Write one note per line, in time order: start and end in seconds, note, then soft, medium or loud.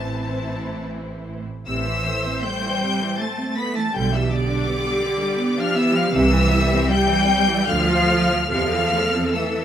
0.00 1.43 A1 medium
0.00 1.43 A2 medium
0.00 1.44 E3 medium
0.00 1.44 C4 medium
0.00 1.44 E4 medium
0.00 1.44 C5 medium
0.00 0.84 A5 medium
1.67 2.32 A1 medium
1.67 1.86 C3 medium
1.67 2.41 E3 medium
1.67 3.90 C5 medium
1.67 2.41 E5 medium
1.67 2.41 E6 loud
1.87 2.07 E3 medium
2.07 2.26 A3 medium
2.26 2.45 C4 medium
2.44 3.20 G3 loud
2.44 2.64 A3 medium
2.44 3.20 G5 medium
2.44 3.20 G6 loud
2.65 2.83 E3 medium
2.83 3.01 C3 medium
3.02 3.20 E3 medium
3.20 3.57 A3 medium
3.20 3.39 A3 medium
3.20 3.57 A5 medium
3.20 3.57 A6 medium
3.39 3.57 C4 medium
3.57 3.76 A3 medium
3.57 3.76 B3 medium
3.57 3.75 B5 medium
3.57 3.76 B6 loud
3.75 3.94 E3 medium
3.75 3.95 A3 medium
3.75 3.94 A5 medium
3.75 3.95 A6 medium
3.94 4.55 B1 loud
3.94 4.11 D3 medium
3.94 4.13 G3 medium
3.94 7.65 G4 medium
3.94 4.13 G5 medium
3.94 4.13 G6 loud
4.13 4.31 E3 medium
4.13 4.31 G3 medium
4.13 4.31 E5 medium
4.13 4.32 E6 medium
4.31 5.58 D3 medium
4.31 4.49 B3 medium
4.31 5.59 D5 medium
4.31 5.59 D6 loud
4.50 4.68 D4 medium
4.68 4.86 B3 medium
4.86 5.04 G3 medium
5.04 5.22 D3 medium
5.21 5.40 G3 medium
5.39 5.58 B3 medium
5.58 5.77 F3 medium
5.58 5.77 D4 medium
5.58 5.76 F5 loud
5.58 5.77 F6 loud
5.76 5.95 E3 medium
5.76 5.95 B3 medium
5.76 5.94 E5 loud
5.76 5.95 E6 loud
5.94 6.13 F3 loud
5.94 6.13 G3 medium
5.94 6.13 F5 medium
5.94 6.14 F6 loud
6.13 6.78 C2 loud
6.13 6.30 C3 loud
6.13 6.89 E3 loud
6.13 6.91 E5 loud
6.13 6.89 E6 loud
6.32 6.51 E3 medium
6.51 6.71 G3 medium
6.72 6.91 C4 loud
6.90 7.69 G3 loud
6.90 7.10 G3 loud
6.90 7.69 G5 loud
6.90 7.68 G6 loud
7.10 7.29 E3 medium
7.29 7.49 C3 medium
7.49 7.69 E3 medium
7.68 8.37 D2 medium
7.68 7.87 D3 medium
7.68 8.50 F3 loud
7.68 8.52 F4 medium
7.68 8.50 F5 loud
7.68 8.50 F6 loud
7.89 8.10 F3 medium
8.09 8.30 A3 medium
8.30 8.51 F3 medium
8.51 9.21 E2 loud
8.51 8.71 C3 medium
8.51 9.34 F3 loud
8.51 9.65 A4 medium
8.51 9.34 F5 loud
8.51 9.34 F6 loud
8.73 8.94 E3 medium
8.94 9.15 A3 medium
9.14 9.35 C4 medium
9.35 9.65 E3 medium
9.35 9.56 A3 medium
9.35 9.65 E5 medium
9.35 9.65 E6 medium
9.56 9.65 E3 medium